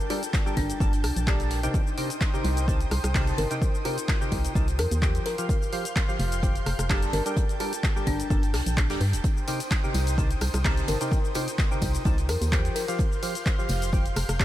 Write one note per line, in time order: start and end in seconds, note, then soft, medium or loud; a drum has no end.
0.00 5.22 G5 medium
0.00 1.72 A5 medium
0.00 1.70 G6 medium
0.10 0.23 G3 medium
0.10 0.23 D4 medium
0.10 0.57 F4 loud
0.10 0.23 G4 medium
0.10 0.23 A4 medium
0.10 0.22 A#4 medium
0.10 0.22 G5 loud
0.10 closed hi-hat medium
0.10 open hi-hat loud
0.23 closed hi-hat medium
0.23 cabasa medium
0.33 kick loud
0.33 snare loud
0.33 clap loud
0.33 closed hi-hat loud
0.33 cabasa medium
0.46 0.78 G3 medium
0.46 0.78 D4 medium
0.46 0.78 G4 medium
0.46 0.78 A4 medium
0.46 0.78 A#4 medium
0.46 0.78 G5 medium
0.46 cabasa soft
0.57 0.73 G1 loud
0.57 1.04 D4 medium
0.57 kick medium
0.57 closed hi-hat medium
0.57 open hi-hat medium
0.70 closed hi-hat medium
0.70 cabasa medium
0.80 1.05 G1 medium
0.80 0.93 G3 medium
0.80 0.93 D4 medium
0.80 0.93 G4 medium
0.80 0.93 A4 medium
0.80 0.93 A#4 medium
0.80 0.93 A5 medium
0.80 kick loud
0.80 closed hi-hat medium
0.80 cabasa medium
0.93 closed hi-hat soft
0.93 cabasa soft
1.04 1.12 C2 medium
1.04 cross-stick medium
1.04 closed hi-hat medium
1.04 open hi-hat loud
1.16 1.68 A#1 medium
1.16 closed hi-hat medium
1.16 cabasa medium
1.27 1.60 G3 medium
1.27 1.60 D4 medium
1.27 1.60 G4 medium
1.27 1.60 A4 medium
1.27 1.60 A#4 medium
1.27 1.60 A5 loud
1.27 kick loud
1.27 snare loud
1.27 clap loud
1.27 closed hi-hat medium
1.27 cabasa medium
1.40 closed hi-hat soft
1.40 cabasa soft
1.51 snare soft
1.51 closed hi-hat medium
1.51 open hi-hat medium
1.63 1.81 C3 medium
1.63 1.81 D#4 medium
1.63 1.81 G4 medium
1.63 1.81 A#4 medium
1.63 1.81 C5 medium
1.63 1.81 G5 loud
1.63 closed hi-hat medium
1.63 cabasa medium
1.74 5.22 C5 medium
1.74 5.22 D#6 medium
1.74 kick loud
1.74 closed hi-hat medium
1.74 cabasa medium
1.87 cabasa soft
1.97 2.10 C3 medium
1.97 2.10 D#4 medium
1.97 2.10 G4 medium
1.97 2.10 A#4 medium
1.97 2.10 C5 medium
1.97 2.10 G5 loud
1.97 closed hi-hat medium
1.97 open hi-hat loud
2.10 closed hi-hat medium
2.10 cabasa medium
2.21 kick loud
2.21 snare loud
2.21 clap loud
2.21 closed hi-hat medium
2.21 cabasa medium
2.34 2.65 C3 medium
2.34 2.65 D#4 medium
2.34 2.65 G4 medium
2.34 2.65 A#4 medium
2.34 2.65 C5 medium
2.34 2.65 G5 medium
2.34 cabasa soft
2.44 2.85 C2 loud
2.44 closed hi-hat medium
2.44 open hi-hat medium
2.57 closed hi-hat medium
2.57 cabasa medium
2.68 2.80 C3 medium
2.68 2.80 D#4 medium
2.68 2.80 G4 medium
2.68 2.80 A#4 medium
2.68 2.80 C5 medium
2.68 2.80 A5 medium
2.68 kick loud
2.68 closed hi-hat medium
2.68 cabasa medium
2.81 closed hi-hat medium
2.81 cabasa soft
2.91 3.00 C2 medium
2.91 cross-stick medium
2.91 closed hi-hat medium
2.91 open hi-hat loud
3.04 3.32 C2 medium
3.04 cross-stick medium
3.04 closed hi-hat medium
3.04 cabasa medium
3.15 3.48 C3 loud
3.15 3.48 D#4 medium
3.15 3.48 G4 medium
3.15 3.48 A#4 medium
3.15 3.48 C5 medium
3.15 3.48 A5 loud
3.15 kick loud
3.15 snare loud
3.15 clap loud
3.15 open hi-hat medium
3.15 cabasa medium
3.27 closed hi-hat medium
3.27 cabasa soft
3.38 3.46 G1 loud
3.38 3.51 A#4 medium
3.38 closed hi-hat medium
3.38 open hi-hat medium
3.51 3.69 C3 medium
3.51 3.69 D#4 medium
3.51 3.69 G4 medium
3.51 3.69 A#4 medium
3.51 3.69 C5 medium
3.51 3.69 G5 loud
3.51 closed hi-hat medium
3.51 cabasa medium
3.62 kick loud
3.62 closed hi-hat medium
3.62 cabasa medium
3.75 cabasa soft
3.85 3.98 C3 medium
3.85 3.98 D#4 medium
3.85 4.32 F4 medium
3.85 3.98 G4 medium
3.85 3.98 A#4 medium
3.85 3.98 C5 medium
3.85 3.98 G5 loud
3.85 closed hi-hat medium
3.85 open hi-hat loud
3.98 closed hi-hat medium
3.98 cabasa medium
4.09 kick loud
4.09 snare loud
4.09 clap loud
4.09 closed hi-hat loud
4.09 cabasa medium
4.21 4.53 C3 medium
4.21 4.53 D#4 medium
4.21 4.53 G4 medium
4.21 4.53 A#4 medium
4.21 4.53 C5 medium
4.21 4.53 G5 medium
4.21 cabasa soft
4.31 4.48 C2 loud
4.31 kick medium
4.31 closed hi-hat medium
4.31 open hi-hat medium
4.45 closed hi-hat medium
4.45 cabasa medium
4.55 4.80 C2 medium
4.55 4.68 C3 medium
4.55 4.68 D#4 medium
4.55 4.68 G4 medium
4.55 4.68 A#4 medium
4.55 4.68 C5 medium
4.55 4.68 A5 medium
4.55 kick loud
4.55 closed hi-hat medium
4.55 cabasa medium
4.68 closed hi-hat soft
4.68 cabasa soft
4.78 4.87 F2 loud
4.78 4.91 A#4 medium
4.78 cross-stick medium
4.78 closed hi-hat medium
4.78 open hi-hat loud
4.91 5.20 D#2 medium
4.91 closed hi-hat medium
4.91 cabasa medium
5.02 5.35 F3 medium
5.02 5.35 G4 medium
5.02 5.35 C5 medium
5.02 5.35 G5 loud
5.02 kick loud
5.02 snare loud
5.02 clap loud
5.02 closed hi-hat medium
5.02 cabasa medium
5.15 closed hi-hat medium
5.15 cabasa soft
5.26 5.62 A#4 loud
5.26 7.11 F5 medium
5.26 7.11 C6 medium
5.26 9.20 G6 medium
5.26 snare soft
5.26 closed hi-hat medium
5.26 open hi-hat medium
5.38 5.56 F3 medium
5.38 5.56 G4 medium
5.38 5.56 C5 medium
5.38 5.56 F5 loud
5.38 closed hi-hat medium
5.38 cabasa medium
5.49 kick loud
5.49 closed hi-hat medium
5.49 cabasa medium
5.62 cabasa soft
5.73 5.85 F3 medium
5.73 5.85 G4 medium
5.73 5.85 C5 medium
5.73 5.85 F5 loud
5.73 closed hi-hat medium
5.73 open hi-hat loud
5.85 closed hi-hat medium
5.85 cabasa medium
5.96 kick loud
5.96 snare loud
5.96 clap loud
5.96 closed hi-hat loud
5.96 cabasa medium
6.09 6.40 F3 medium
6.09 6.40 G4 medium
6.09 6.40 C5 medium
6.09 6.40 F5 medium
6.09 cabasa soft
6.20 6.60 F1 loud
6.20 closed hi-hat medium
6.20 open hi-hat medium
6.32 closed hi-hat medium
6.32 cabasa medium
6.43 6.55 F3 medium
6.43 6.55 G4 medium
6.43 6.55 C5 medium
6.43 6.55 G5 medium
6.43 kick loud
6.43 closed hi-hat medium
6.43 cabasa medium
6.56 closed hi-hat medium
6.56 cabasa soft
6.66 6.75 F1 medium
6.66 cross-stick medium
6.66 closed hi-hat medium
6.66 open hi-hat loud
6.79 7.07 F1 medium
6.79 cross-stick medium
6.79 closed hi-hat medium
6.79 cabasa medium
6.90 7.23 G3 loud
6.90 7.23 D4 medium
6.90 7.23 G4 medium
6.90 7.23 A4 medium
6.90 7.23 A#4 medium
6.90 7.23 A5 loud
6.90 kick loud
6.90 snare loud
6.90 clap loud
6.90 open hi-hat medium
6.90 cabasa medium
7.03 closed hi-hat medium
7.03 cabasa soft
7.13 7.21 G1 loud
7.13 7.26 A#4 medium
7.13 12.72 G5 medium
7.13 9.22 A5 medium
7.13 closed hi-hat medium
7.13 open hi-hat medium
7.25 7.44 G3 medium
7.25 7.44 D4 medium
7.25 7.44 G4 medium
7.25 7.44 A4 medium
7.25 7.44 A#4 medium
7.25 7.44 G5 loud
7.25 closed hi-hat soft
7.25 closed hi-hat medium
7.25 cabasa medium
7.37 kick loud
7.37 closed hi-hat medium
7.37 cabasa medium
7.49 closed hi-hat soft
7.49 cabasa soft
7.60 7.73 G3 medium
7.60 7.73 D4 medium
7.60 8.07 F4 medium
7.60 7.73 G4 medium
7.60 7.73 A4 medium
7.60 7.73 A#4 medium
7.60 7.73 G5 loud
7.60 closed hi-hat medium
7.60 open hi-hat loud
7.73 closed hi-hat medium
7.73 cabasa medium
7.83 kick loud
7.83 snare loud
7.83 clap loud
7.83 closed hi-hat medium
7.83 cabasa medium
7.96 8.28 G3 medium
7.96 8.28 D4 medium
7.96 8.28 G4 medium
7.96 8.28 A4 medium
7.96 8.28 A#4 medium
7.96 8.28 G5 medium
7.96 cabasa soft
8.06 8.23 G1 loud
8.06 8.54 D4 medium
8.06 kick medium
8.06 closed hi-hat medium
8.06 open hi-hat medium
8.20 closed hi-hat medium
8.20 cabasa medium
8.30 8.55 G1 loud
8.30 8.43 G3 medium
8.30 8.43 D4 medium
8.30 8.43 G4 medium
8.30 8.43 A4 medium
8.30 8.43 A#4 medium
8.30 8.43 A5 medium
8.30 kick loud
8.30 closed hi-hat medium
8.30 cabasa medium
8.43 closed hi-hat soft
8.43 closed hi-hat medium
8.43 cabasa soft
8.54 8.62 C2 loud
8.54 cross-stick medium
8.54 snare loud
8.54 open hi-hat loud
8.54 open hi-hat medium
8.66 8.91 A#1 medium
8.66 closed hi-hat medium
8.66 cabasa medium
8.77 kick loud
8.77 clap loud
8.77 closed hi-hat medium
8.77 cabasa medium
8.90 8.97 F1 medium
8.90 9.01 G3 medium
8.90 9.01 D4 medium
8.90 9.01 G4 medium
8.90 9.01 A4 medium
8.90 9.01 A#4 medium
8.90 9.01 G5 loud
8.90 snare loud
8.90 closed hi-hat medium
8.90 open hi-hat medium
8.90 cabasa soft
9.01 9.15 G2 loud
9.01 open hi-hat medium
9.13 9.20 D1 medium
9.13 closed hi-hat medium
9.13 cabasa medium
9.24 12.72 C5 medium
9.24 12.72 D#6 medium
9.24 kick loud
9.24 closed hi-hat medium
9.24 tambourine soft
9.24 cabasa medium
9.37 cabasa soft
9.47 9.60 C3 medium
9.47 9.60 D#4 medium
9.47 9.60 G4 medium
9.47 9.60 A#4 medium
9.47 9.60 C5 medium
9.47 9.60 G5 loud
9.47 closed hi-hat medium
9.47 open hi-hat loud
9.47 ride medium
9.47 tambourine loud
9.60 closed hi-hat medium
9.60 tambourine medium
9.60 cabasa medium
9.71 kick loud
9.71 snare loud
9.71 clap loud
9.71 closed hi-hat medium
9.71 tambourine soft
9.71 cabasa medium
9.84 10.15 C3 medium
9.84 10.15 D#4 medium
9.84 10.15 G4 medium
9.84 10.15 A#4 medium
9.84 10.15 C5 medium
9.84 10.15 G5 medium
9.84 cabasa soft
9.94 10.35 C2 loud
9.94 closed hi-hat medium
9.94 open hi-hat medium
9.94 ride medium
9.94 tambourine medium
10.07 closed hi-hat medium
10.07 tambourine soft
10.07 cabasa medium
10.18 10.30 C3 medium
10.18 10.30 D#4 medium
10.18 10.30 G4 medium
10.18 10.30 A#4 medium
10.18 10.30 C5 medium
10.18 10.30 A5 medium
10.18 kick loud
10.18 closed hi-hat medium
10.18 tambourine soft
10.18 cabasa medium
10.31 closed hi-hat medium
10.31 cabasa soft
10.41 10.50 C2 medium
10.41 cross-stick medium
10.41 closed hi-hat medium
10.41 open hi-hat loud
10.41 ride medium
10.41 tambourine loud
10.53 10.82 C2 loud
10.53 cross-stick medium
10.53 closed hi-hat medium
10.53 tambourine medium
10.53 cabasa medium
10.65 10.98 C3 loud
10.65 10.98 D#4 medium
10.65 10.98 G4 medium
10.65 10.98 A#4 medium
10.65 10.98 C5 medium
10.65 10.98 A5 loud
10.65 kick loud
10.65 snare loud
10.65 clap loud
10.65 open hi-hat medium
10.65 cabasa medium
10.77 closed hi-hat medium
10.77 cabasa soft
10.87 10.96 G1 loud
10.87 11.01 A#4 loud
10.87 closed hi-hat medium
10.87 open hi-hat medium
10.87 ride medium
10.87 tambourine medium
11.01 11.19 C3 medium
11.01 11.19 D#4 medium
11.01 11.19 G4 medium
11.01 11.19 A#4 medium
11.01 11.19 C5 medium
11.01 11.19 G5 loud
11.01 closed hi-hat medium
11.01 tambourine medium
11.01 cabasa medium
11.11 kick loud
11.11 closed hi-hat medium
11.11 tambourine soft
11.11 cabasa medium
11.25 cabasa soft
11.35 11.48 C3 medium
11.35 11.48 D#4 medium
11.35 11.82 F4 medium
11.35 11.48 G4 medium
11.35 11.48 A#4 medium
11.35 11.48 C5 medium
11.35 11.48 G5 loud
11.35 closed hi-hat medium
11.35 open hi-hat loud
11.35 ride medium
11.35 tambourine medium
11.48 closed hi-hat medium
11.48 tambourine medium
11.48 cabasa medium
11.58 kick loud
11.58 snare loud
11.58 clap loud
11.58 closed hi-hat medium
11.58 tambourine soft
11.58 cabasa medium
11.71 12.03 C3 medium
11.71 12.03 D#4 medium
11.71 12.03 G4 medium
11.71 12.03 A#4 medium
11.71 12.03 C5 medium
11.71 12.03 G5 medium
11.71 cabasa soft
11.82 11.98 C2 loud
11.82 kick medium
11.82 closed hi-hat medium
11.82 open hi-hat loud
11.82 ride medium
11.82 tambourine loud
11.94 closed hi-hat medium
11.94 tambourine medium
11.94 cabasa medium
12.05 12.30 C2 medium
12.05 12.18 C3 medium
12.05 12.18 D#4 medium
12.05 12.18 G4 medium
12.05 12.18 A#4 medium
12.05 12.18 C5 medium
12.05 12.18 A5 medium
12.05 kick loud
12.05 closed hi-hat medium
12.05 tambourine soft
12.05 cabasa medium
12.18 closed hi-hat soft
12.18 closed hi-hat medium
12.18 cabasa soft
12.29 12.37 F2 loud
12.29 12.42 A#4 medium
12.29 cross-stick medium
12.29 closed hi-hat medium
12.29 open hi-hat loud
12.29 ride medium
12.29 tambourine medium
12.41 12.70 D#2 medium
12.41 closed hi-hat medium
12.41 tambourine medium
12.41 cabasa medium
12.52 12.85 F3 medium
12.52 12.85 G4 medium
12.52 12.85 C5 medium
12.52 12.85 G5 loud
12.52 kick loud
12.52 snare loud
12.52 clap loud
12.52 closed hi-hat medium
12.52 cabasa medium
12.65 closed hi-hat medium
12.65 cabasa soft
12.76 13.12 A#4 medium
12.76 14.45 F5 medium
12.76 14.45 C6 medium
12.76 14.45 G6 medium
12.76 snare soft
12.76 closed hi-hat medium
12.76 open hi-hat loud
12.76 ride medium
12.76 tambourine loud
12.88 13.06 F3 medium
12.88 13.06 G4 medium
12.88 13.06 C5 medium
12.88 13.06 F5 loud
12.88 closed hi-hat medium
12.88 tambourine medium
12.88 cabasa medium
12.98 kick loud
12.98 closed hi-hat medium
12.98 tambourine soft
12.98 cabasa medium
13.12 cabasa soft
13.23 13.35 F3 medium
13.23 13.35 G4 medium
13.23 13.35 C5 medium
13.23 13.35 F5 loud
13.23 closed hi-hat medium
13.23 open hi-hat loud
13.23 ride medium
13.23 tambourine medium
13.35 closed hi-hat medium
13.35 tambourine medium
13.35 cabasa medium
13.46 kick loud
13.46 snare loud
13.46 clap loud
13.46 closed hi-hat loud
13.46 tambourine soft
13.46 cabasa medium
13.59 13.90 F3 medium
13.59 13.90 G4 medium
13.59 13.90 C5 medium
13.59 13.90 F5 medium
13.59 cabasa soft
13.69 14.10 F1 loud
13.69 closed hi-hat medium
13.69 open hi-hat loud
13.69 ride medium
13.69 tambourine loud
13.82 closed hi-hat medium
13.82 tambourine medium
13.82 cabasa medium
13.92 14.05 F3 medium
13.92 14.05 G4 medium
13.92 14.05 C5 medium
13.92 14.05 G5 medium
13.92 kick loud
13.92 closed hi-hat medium
13.92 tambourine soft
13.92 cabasa medium
14.06 closed hi-hat medium
14.06 cabasa soft
14.16 14.25 F1 medium
14.16 cross-stick medium
14.16 closed hi-hat medium
14.16 open hi-hat loud
14.16 ride medium
14.16 tambourine loud
14.29 14.45 F1 medium
14.29 cross-stick medium
14.29 closed hi-hat medium
14.29 tambourine medium
14.29 cabasa medium
14.40 14.45 G3 loud
14.40 14.45 D4 medium
14.40 14.45 G4 medium
14.40 14.45 A4 medium
14.40 14.45 A#4 medium
14.40 14.45 A5 loud
14.40 kick loud
14.40 snare loud
14.40 clap loud
14.40 open hi-hat medium
14.40 tambourine soft
14.40 cabasa medium